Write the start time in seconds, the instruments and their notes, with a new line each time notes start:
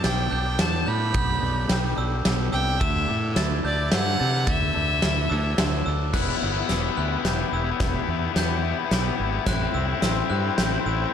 Already playing: woodwind section D3 G3 B3 G4, clean electric guitar B3 D4
0.03 fingered electric bass B1, clean electric guitar G4, violin G5, glockenspiel A6, snare, ride
0.30 fingered electric bass B1, clean electric guitar D4, glockenspiel G6
0.58 fingered electric bass E2, clean electric guitar B3, violin A5, snare, ride
0.86 fingered electric bass A2, clean electric guitar D4, violin B5, glockenspiel G6
1.14 fingered electric bass B1, clean electric guitar B3, glockenspiel G6, kick, ride
1.41 fingered electric bass B1, clean electric guitar D4
1.69 fingered electric bass B1, clean electric guitar G4, snare, ride
1.96 fingered electric bass B1, clean electric guitar D4, glockenspiel E6
2.25 fingered electric bass B1, clean electric guitar B3, snare, ride
2.52 fingered electric bass C2, clean electric guitar D4, violin G5, glockenspiel E6
2.79 fingered electric bass D2, clean electric guitar D3, woodwind section E3 A3 E4, violin E5, glockenspiel E6, kick, ride
3.07 fingered electric bass A2, clean electric guitar D4
3.35 fingered electric bass D2, clean electric guitar E4, glockenspiel A6, snare, ride
3.63 fingered electric bass D2, clean electric guitar D4, violin D5, glockenspiel G6
3.90 fingered electric bass G2, clean electric guitar D3, violin F#5, snare, ride
4.19 fingered electric bass C3, clean electric guitar D4, glockenspiel A6
4.47 fingered electric bass D2, clean electric guitar D3, violin E5, glockenspiel A6, kick, ride
4.74 fingered electric bass D2, clean electric guitar D4
5.02 fingered electric bass D2, clean electric guitar E4, snare, ride
5.29 fingered electric bass D2, clean electric guitar D4, glockenspiel E6
5.58 fingered electric bass D2, clean electric guitar D3, snare, ride
5.85 fingered electric bass D2, clean electric guitar D4, glockenspiel E6
6.13 fingered electric bass E1, clean electric guitar E2, overdriven electric guitar B3 E4, woodwind section E4 G4 B4 G5, glockenspiel F#6, kick, snare, crash
6.21 overdriven electric guitar B3 E4
6.28 overdriven electric guitar B3 E4
6.36 overdriven electric guitar B3 E4
6.41 fingered electric bass G1, clean electric guitar B2, overdriven electric guitar B3 E4, glockenspiel E6
6.52 overdriven electric guitar B3 E4
6.60 overdriven electric guitar B3 E4
6.68 fingered electric bass E1, clean electric guitar G3, overdriven electric guitar B3 E4, glockenspiel E6, snare, closed hi-hat
6.74 overdriven electric guitar B3 E4
6.83 overdriven electric guitar B3 E4
6.90 overdriven electric guitar B3 E4
6.97 fingered electric bass D2, clean electric guitar E3, overdriven electric guitar B3 E4, glockenspiel F#6
7.05 overdriven electric guitar B3 E4
7.12 overdriven electric guitar B3 E4
7.18 overdriven electric guitar E4
7.23 fingered electric bass E1, clean electric guitar G3, overdriven electric guitar B3, glockenspiel G6, snare, closed hi-hat
7.27 overdriven electric guitar B3 E4
7.34 overdriven electric guitar E4
7.39 overdriven electric guitar B3 E4
7.47 overdriven electric guitar B3 E4
7.52 fingered electric bass E1, overdriven electric guitar B3, clean electric guitar E4, glockenspiel E6
7.58 overdriven electric guitar E4
7.64 overdriven electric guitar B3 E4
7.71 overdriven electric guitar B3 E4
7.80 fingered electric bass E1, clean electric guitar E2, overdriven electric guitar B3 E4, kick, snare, closed hi-hat
7.88 overdriven electric guitar B3 E4
7.94 overdriven electric guitar B3 E4
8.03 overdriven electric guitar B3 E4
8.08 fingered electric bass E2, clean electric guitar B2, overdriven electric guitar B3 E4
8.18 overdriven electric guitar B3 E4
8.25 overdriven electric guitar B3 E4
8.32 fingered electric bass E2, clean electric guitar G3, overdriven electric guitar B3 E4, snare, closed hi-hat
8.37 glockenspiel G6
8.41 overdriven electric guitar B3 E4
8.48 overdriven electric guitar B3 E4
8.56 overdriven electric guitar B3 E4
8.63 clean electric guitar E3, overdriven electric guitar B3 E4
8.71 overdriven electric guitar B3 E4
8.78 overdriven electric guitar B3 E4
8.85 overdriven electric guitar B3 E4
8.91 fingered electric bass B1, clean electric guitar G3, overdriven electric guitar B3 E4, snare, closed hi-hat
9.02 overdriven electric guitar B3 E4
9.08 overdriven electric guitar B3 E4
9.16 fingered electric bass G#1, overdriven electric guitar B3 E4, clean electric guitar E4
9.23 overdriven electric guitar B3 E4
9.31 overdriven electric guitar B3 E4
9.38 overdriven electric guitar B3 E4
9.46 fingered electric bass A1, clean electric guitar A2, overdriven electric guitar C4 E4, woodwind section A4 C5, glockenspiel F#6, kick, snare, closed hi-hat
9.55 overdriven electric guitar C4 E4
9.62 overdriven electric guitar C4 E4
9.70 overdriven electric guitar C4 E4
9.74 fingered electric bass C2, clean electric guitar G3, overdriven electric guitar C4, glockenspiel E6
9.78 overdriven electric guitar E4
9.87 overdriven electric guitar C4 E4
9.93 overdriven electric guitar C4 E4
10.01 fingered electric bass A1, clean electric guitar C4, overdriven electric guitar C4 E4, glockenspiel E6, snare, closed hi-hat
10.09 overdriven electric guitar C4 E4
10.17 overdriven electric guitar C4 E4
10.25 overdriven electric guitar C4 E4
10.29 fingered electric bass G2, clean electric guitar G3, overdriven electric guitar C4, glockenspiel F#6
10.34 overdriven electric guitar E4
10.40 overdriven electric guitar C4 E4
10.49 overdriven electric guitar C4 E4
10.56 fingered electric bass A1, overdriven electric guitar C4 E4, clean electric guitar C4, glockenspiel G6, snare, closed hi-hat
10.64 overdriven electric guitar C4 E4
10.72 overdriven electric guitar C4 E4
10.80 overdriven electric guitar C4 E4
10.84 fingered electric bass A1, overdriven electric guitar C4, clean electric guitar E4, glockenspiel E6
10.88 overdriven electric guitar E4
10.94 overdriven electric guitar C4 E4
11.02 overdriven electric guitar C4 E4